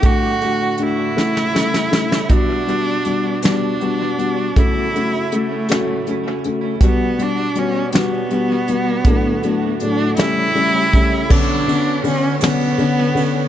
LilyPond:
<<
  \new Staff \with { instrumentName = "Cello" } { \time 6/8 \key g \lydian \tempo 4. = 53 fis'4 e'2 | d'4. d'4. | e'4 a4. r8 | b8 d'8 cis'8 b4.~ |
b4 d'8 e'4. | d'4 cis'8 b4. | }
  \new Staff \with { instrumentName = "Clean electric guitar" } { \time 6/8 \key g \lydian <a, d a d' fis'>8 <d a d' fis'>16 <a d' fis'>8 <a d' fis'>16 <a, e a cis' e'>8 <e a cis' e'>16 <a cis' e'>8 <a cis' e'>16 | <g b d' fis'>8 <g b d' fis'>16 <b d' fis'>8 <b d' fis'>16 <g b d' fis'>8 <g b d' fis'>16 <b d' fis'>8 <b d' fis'>16 | <a, fis a cis' e'>8 <fis a cis' e'>16 <a cis' e'>8 <a cis' e'>16 <a, fis a cis' e'>8 <fis a cis' e'>16 <a cis' e'>8 <a cis' e'>16 | <g b d' fis'>8 <g b d' fis'>16 <b d' fis'>8 <b d' fis'>16 <g b d' fis'>8 <g b d' fis'>16 <b d' fis'>8 <b d' fis'>16 |
<a, d a d' fis'>8 <d a d' fis'>16 <a d' fis'>8 <a d' fis'>16 <a, e g cis' e'>8 <e g cis' e'>16 <g cis' e'>8 <g cis' e'>16 | <b, fis b d' fis' cis''>8 <b d' fis' cis''>8 <b d' fis' cis''>16 <b d' fis' cis''>16 <b, fis b d' fis' cis''>8 <b d' fis' cis''>8 <b d' fis' cis''>16 <b d' fis' cis''>16 | }
  \new Staff \with { instrumentName = "Felt piano" } { \time 6/8 \key g \lydian <a d' fis'>8 <a d' fis'>8 <a d' fis'>8 <a cis' e'>8 <a cis' e'>8 <a cis' e'>8 | <g b fis'>8 <g b fis'>8 <g b fis'>8 <g b fis'>8 <g b fis'>8 <g b fis'>8 | <a cis' fis'>8 <a cis' fis'>8 <a cis' fis'>8 <a cis' fis'>8 <a cis' fis'>8 <a cis' fis'>8 | <g b fis'>8 <g b fis'>8 <g b fis'>8 <g b fis'>8 <g b fis'>8 <g b fis'>8 |
<a, fis a d'>8 <a, fis a d'>8 <a, fis a d'>8 <g a cis'>8 <g a cis'>8 <g a cis'>8 | <d b cis'>8 <d b cis'>8 <d b cis'>8 <d b cis'>8 <d b cis'>8 <d b cis'>8 | }
  \new Staff \with { instrumentName = "Tonewheel organ" } { \time 6/8 \key g \lydian fis'4. e'4. | fis'2.~ | fis'2. | fis'2.~ |
fis'4. g'4. | b'2. | }
  \new Staff \with { instrumentName = "Tonewheel organ" } { \clef bass \time 6/8 \key g \lydian << { a2. | g2. | a2. | g2. |
a2. | cis''2. | } \\ { <a, d>4. cis4. | b,2. | cis2. | b,2. |
<a, d>4. cis4. | d2. | } >> }
  \new DrumStaff \with { instrumentName = "Drums" } \drummode { \time 6/8 <hh bd>8 hh8 hh8 sn16 sn16 sn16 sn16 sn16 sn16 | <hh bd>8 hh8 hh8 <hh sn>8 hh8 hh8 | <hh bd>8 hh8 hh8 <hh sn>8 hh8 hh8 | <hh bd>8 hh8 hh8 <hh sn>8 hh8 hh8 |
<hh bd>8 hh8 hh8 <hh sn>8 hh8 <hh bd>8 | <cymc bd>8 cymr8 cymr8 <cymr sn>8 cymr8 cymr8 | }
>>